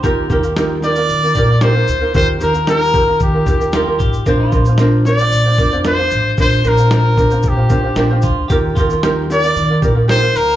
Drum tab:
SH |x-xxx-xxx-x-x-x-|x-xxx-x-x-xxx-xx|x-xxx-xxx-x-x-x-|x-xxx-xxx-x-x-x-|
SD |----o-o-----o---|----o-------o---|----o-o-----o---|----o-------o---|
BD |o-o-------o-----|o-----o-o-o---o-|o-o-------o-----|o-----o-o-o---o-|

SH |x-xxx-xxx-x-x-x-|
SD |----o-o-----o---|
BD |o-o-------o-----|